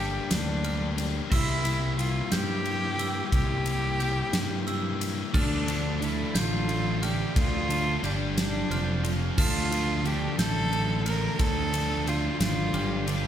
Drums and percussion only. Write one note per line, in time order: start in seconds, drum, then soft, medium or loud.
0.31 snare loud
0.31 ride loud
0.64 ride loud
0.98 ride medium
1.32 kick loud
1.32 crash loud
1.65 ride medium
1.99 ride loud
2.32 snare loud
2.32 ride loud
2.65 ride medium
2.99 ride medium
3.32 kick loud
3.32 ride loud
3.66 ride medium
4.00 ride medium
4.33 snare loud
4.33 ride loud
4.67 ride medium
5.01 ride medium
5.34 kick loud
5.34 crash loud
5.68 ride loud
6.02 ride loud
6.35 snare loud
6.35 ride loud
6.69 ride medium
7.03 ride medium
7.36 kick loud
7.36 ride loud
7.70 ride medium
8.04 ride medium
8.38 snare loud
8.38 ride loud
8.71 ride medium
9.04 ride medium
9.38 kick loud
9.38 crash loud
9.72 ride medium
10.05 ride medium
10.39 snare loud
10.39 ride loud
10.73 ride medium
11.06 ride medium
11.39 kick loud
11.39 ride loud
11.74 ride loud
12.07 ride medium
12.40 snare loud
12.40 ride loud
12.74 ride medium
13.07 ride medium